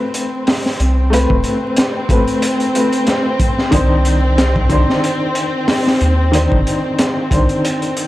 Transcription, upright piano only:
0, 0, Header, 1, 2, 480
1, 0, Start_track
1, 0, Key_signature, 0, "minor"
1, 0, Tempo, 652174
1, 821, Time_signature, 4, 2, 24, 8
1, 5942, End_track
2, 0, Start_track
2, 0, Title_t, "Upright piano"
2, 0, Program_c, 0, 0
2, 0, Control_c, 0, 64, 127
2, 0, Note_on_c, 0, 57, 83
2, 0, Note_on_c, 0, 60, 82
2, 0, Note_on_c, 0, 71, 96
2, 790, Note_off_c, 0, 57, 0
2, 796, Note_off_c, 0, 60, 0
2, 803, Note_off_c, 0, 71, 0
2, 810, Note_on_c, 0, 57, 89
2, 822, Note_on_c, 0, 60, 82
2, 836, Note_on_c, 0, 71, 100
2, 1509, Note_off_c, 0, 57, 0
2, 1515, Note_off_c, 0, 60, 0
2, 1523, Note_off_c, 0, 71, 0
2, 1538, Note_on_c, 0, 57, 78
2, 1546, Note_on_c, 0, 60, 71
2, 1551, Note_on_c, 0, 71, 88
2, 1993, Note_off_c, 0, 57, 0
2, 1997, Note_off_c, 0, 60, 0
2, 2000, Note_off_c, 0, 71, 0
2, 2016, Note_on_c, 0, 57, 77
2, 2022, Note_on_c, 0, 60, 69
2, 2029, Note_on_c, 0, 71, 82
2, 2124, Note_off_c, 0, 57, 0
2, 2127, Note_off_c, 0, 60, 0
2, 2130, Note_off_c, 0, 71, 0
2, 2730, Note_on_c, 0, 51, 101
2, 2743, Note_on_c, 0, 62, 94
2, 2749, Control_c, 0, 64, 0
2, 2758, Note_on_c, 0, 72, 108
2, 2871, Control_c, 0, 64, 127
2, 3429, Note_off_c, 0, 51, 0
2, 3436, Note_off_c, 0, 62, 0
2, 3443, Note_off_c, 0, 72, 0
2, 3451, Note_on_c, 0, 51, 89
2, 3465, Note_on_c, 0, 62, 83
2, 3478, Note_on_c, 0, 72, 104
2, 4630, Note_off_c, 0, 51, 0
2, 4637, Note_off_c, 0, 62, 0
2, 4643, Note_off_c, 0, 72, 0
2, 4648, Note_on_c, 0, 51, 86
2, 4662, Note_on_c, 0, 62, 80
2, 4675, Note_on_c, 0, 72, 99
2, 5348, Note_off_c, 0, 51, 0
2, 5355, Note_off_c, 0, 62, 0
2, 5362, Note_off_c, 0, 72, 0
2, 5375, Note_on_c, 0, 51, 72
2, 5384, Note_on_c, 0, 62, 66
2, 5390, Note_on_c, 0, 72, 87
2, 5832, Note_off_c, 0, 51, 0
2, 5837, Note_off_c, 0, 62, 0
2, 5839, Note_off_c, 0, 72, 0
2, 5942, End_track
0, 0, End_of_file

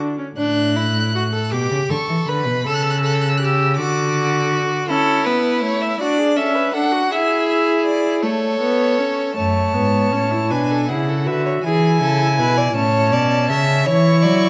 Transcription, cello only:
0, 0, Header, 1, 2, 480
1, 0, Start_track
1, 0, Key_signature, 2, "major"
1, 0, Tempo, 758534
1, 236, Time_signature, 6, 3, 24, 8
1, 2153, Tempo, 741656
1, 5033, Tempo, 758534
1, 7433, Tempo, 740741
1, 9279, End_track
2, 0, Start_track
2, 0, Title_t, "Cello"
2, 0, Program_c, 0, 42
2, 235, Note_on_c, 0, 45, 72
2, 964, Note_on_c, 0, 47, 71
2, 974, Note_off_c, 0, 45, 0
2, 1079, Note_off_c, 0, 47, 0
2, 1082, Note_on_c, 0, 49, 63
2, 1130, Note_off_c, 0, 49, 0
2, 1199, Note_on_c, 0, 50, 67
2, 1247, Note_off_c, 0, 50, 0
2, 1318, Note_on_c, 0, 52, 68
2, 1366, Note_off_c, 0, 52, 0
2, 1438, Note_on_c, 0, 50, 71
2, 1557, Note_on_c, 0, 47, 64
2, 1566, Note_off_c, 0, 50, 0
2, 1678, Note_on_c, 0, 49, 71
2, 1687, Note_off_c, 0, 47, 0
2, 2396, Note_on_c, 0, 50, 77
2, 2406, Note_off_c, 0, 49, 0
2, 3114, Note_off_c, 0, 50, 0
2, 5992, Note_on_c, 0, 42, 60
2, 6217, Note_off_c, 0, 42, 0
2, 6232, Note_on_c, 0, 44, 60
2, 6469, Note_off_c, 0, 44, 0
2, 6473, Note_on_c, 0, 45, 59
2, 6716, Note_on_c, 0, 47, 63
2, 6726, Note_off_c, 0, 45, 0
2, 6958, Note_on_c, 0, 49, 65
2, 6967, Note_off_c, 0, 47, 0
2, 7193, Note_on_c, 0, 50, 69
2, 7203, Note_off_c, 0, 49, 0
2, 7426, Note_off_c, 0, 50, 0
2, 7429, Note_on_c, 0, 52, 72
2, 7668, Note_on_c, 0, 49, 70
2, 7678, Note_off_c, 0, 52, 0
2, 7911, Note_on_c, 0, 47, 70
2, 7921, Note_off_c, 0, 49, 0
2, 8147, Note_off_c, 0, 47, 0
2, 8151, Note_on_c, 0, 45, 76
2, 8388, Note_on_c, 0, 47, 76
2, 8398, Note_off_c, 0, 45, 0
2, 8630, Note_on_c, 0, 49, 75
2, 8640, Note_off_c, 0, 47, 0
2, 8871, Note_on_c, 0, 52, 84
2, 8881, Note_off_c, 0, 49, 0
2, 9110, Note_on_c, 0, 54, 81
2, 9120, Note_off_c, 0, 52, 0
2, 9279, Note_off_c, 0, 54, 0
2, 9279, End_track
0, 0, End_of_file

